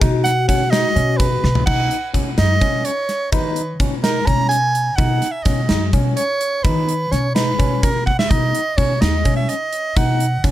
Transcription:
0.01 upright bass B2, tine electric piano D#4, vibraphone F#4, kick, closed hi-hat
0.24 soprano saxophone F#5, snare, closed hi-hat
0.48 tine electric piano C#4, soprano saxophone F#5, kick, closed hi-hat
0.70 tine electric piano D#4, soprano saxophone D#5, snare, closed hi-hat
0.96 upright bass B2, tine electric piano C#4, closed hi-hat
1.17 soprano saxophone B4, kick, closed hi-hat
1.44 upright bass B2, snare
1.55 floor tom
1.66 upright bass B2, tine electric piano D#4, soprano saxophone F#5, kick, crash
1.91 closed hi-hat
2.14 upright bass B2, tine electric piano C#4, kick, closed hi-hat
2.38 upright bass F#2, tine electric piano D#4, soprano saxophone D#5, snare, closed hi-hat
2.61 upright bass B2, tine electric piano C#4, kick, closed hi-hat
2.85 soprano saxophone C#5, closed hi-hat
3.09 snare, closed hi-hat
3.32 upright bass D#3, tine electric piano D#4, soprano saxophone B4, kick, closed hi-hat
3.56 closed hi-hat
3.80 upright bass B2, tine electric piano C#4, kick, closed hi-hat
4.03 tine electric piano D#4, soprano saxophone A#4, snare, closed hi-hat
4.26 upright bass B2, tine electric piano C#4, soprano saxophone A#5, kick, closed hi-hat
4.49 soprano saxophone G#5, closed hi-hat
4.75 closed hi-hat
4.96 upright bass B2, tine electric piano D#4, soprano saxophone F#5, kick, closed hi-hat
5.22 snare, closed hi-hat
5.31 soprano saxophone E5
5.43 upright bass B2, tine electric piano C#4, soprano saxophone D#5, kick, snare, closed hi-hat
5.69 upright bass F#2, tine electric piano D#4, snare, closed hi-hat
5.93 upright bass B2, tine electric piano C#4, kick, closed hi-hat
6.16 soprano saxophone C#5, closed hi-hat
6.41 closed hi-hat
6.64 upright bass D#3, tine electric piano D#4, soprano saxophone B4, kick, closed hi-hat
6.89 closed hi-hat
7.11 upright bass B2, tine electric piano C#4, soprano saxophone C#5, snare, closed hi-hat
7.35 tine electric piano D#4, soprano saxophone B4, snare, closed hi-hat
7.59 upright bass B2, tine electric piano C#4, kick, closed hi-hat
7.83 soprano saxophone A#4, kick, closed hi-hat
8.06 soprano saxophone F#5, kick
8.19 soprano saxophone E5, snare
8.30 upright bass B2, tine electric piano D#4, soprano saxophone D#5, kick, closed hi-hat
8.55 closed hi-hat
8.77 upright bass B2, tine electric piano C#4, soprano saxophone C#5, kick, closed hi-hat
9.01 upright bass D#2, tine electric piano D#4, soprano saxophone D#5, snare, closed hi-hat
9.25 upright bass B2, tine electric piano C#4, kick, closed hi-hat
9.36 soprano saxophone E5
9.49 soprano saxophone D#5, closed hi-hat
9.73 closed hi-hat
9.96 upright bass B2, tine electric piano D#4, soprano saxophone F#5, kick, closed hi-hat
10.20 closed hi-hat
10.44 upright bass B2, tine electric piano C#4, kick, snare, closed hi-hat

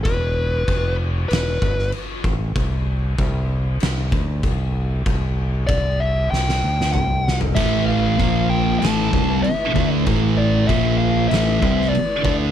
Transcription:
0.04 fingered electric bass E1, lead electric guitar B4, kick, crash
0.68 fingered electric bass F1, kick, crash
1.29 fingered electric bass E1, lead electric guitar B4, crash
1.33 snare
1.62 fingered electric bass G1, kick
1.79 snare
1.92 crash
2.24 fingered electric bass A1, kick
2.56 fingered electric bass C2, kick, crash
3.18 fingered electric bass C2, kick, crash
3.80 fingered electric bass C2, snare, crash
4.12 fingered electric bass D2, kick
4.43 fingered electric bass C2, kick, crash
5.06 fingered electric bass C2, kick, crash
5.67 fingered electric bass C2, lead electric guitar D5, kick, crash
6.00 lead electric guitar E5
6.31 fingered electric bass C2, lead electric guitar G5, snare
6.49 snare
6.64 fingered electric bass D2
6.81 snare
6.93 fingered electric bass C2, lead electric guitar G5, mid tom
7.26 lead electric guitar F#5, snare
7.41 floor tom
7.55 fingered electric bass A1, distorted electric guitar A2 E3 A3, tonewheel organ E3 A3, lead electric guitar E5, kick, crash
7.59 tonewheel organ B4
7.86 lead electric guitar F5
8.19 fingered electric bass A#1, distorted electric guitar A#2 F3 A#3, tonewheel organ A#3 F4, kick, crash
8.23 tonewheel organ C5
8.50 lead electric guitar G5
8.79 fingered electric bass A1, distorted electric guitar A2 E3 A3, tonewheel organ A3 E4 B4, lead electric guitar A5, crash
8.85 snare
9.11 fingered electric bass C2, distorted electric guitar C3 G3 C4, kick
9.43 lead electric guitar E5, crash
9.74 fingered electric bass D2, distorted electric guitar D3 A3 D4, kick
10.06 fingered electric bass A1, distorted electric guitar A2 E3 A3, kick, crash
10.38 lead electric guitar D5
10.68 fingered electric bass A#1, distorted electric guitar A#2 F3 A#3, tonewheel organ A#3 F4 C5, lead electric guitar E5, kick, crash
10.98 lead electric guitar F5
11.28 fingered electric bass A1, distorted electric guitar A2 E3 A3, tonewheel organ A3 E4 B4, lead electric guitar E5, crash
11.34 snare
11.62 fingered electric bass C2, distorted electric guitar C3 G3 C4, kick
11.82 snare
11.89 lead electric guitar D5
11.95 crash
12.24 fingered electric bass D2, distorted electric guitar D3 A3 D4, kick

